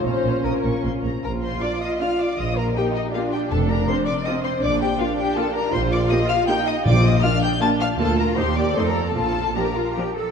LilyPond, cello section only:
\new Staff \with { instrumentName = "Cello section" } { \time 3/4 \key bes \minor \tempo 4 = 158 bes,8 bes,8 bes,8 bes,8 bes,8 bes,8 | \key bes \major f'2.~ | f'4 ees'4 d'4~ | d'2 c'4 |
d'2. | f'2 ees'4 | f'4 d'4 d'4 | f'4 g'4 a'4 |
f'4 g'8 f'8 g'8 a'8 | }